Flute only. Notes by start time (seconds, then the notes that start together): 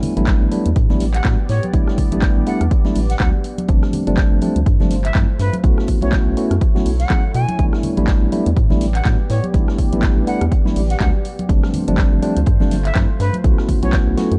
1.14 F#5
1.49 C#5
2.47 F#5
3.10 F#5
3.20 F#5
5.05 E5
5.40 B4
6.02 C#5
6.99 F#5
7.35 G#5
8.95 F#5
9.30 C#5
10.27 F#5
10.90 F#5
11.01 F#5
12.85 E5
13.20 B4
13.83 C#5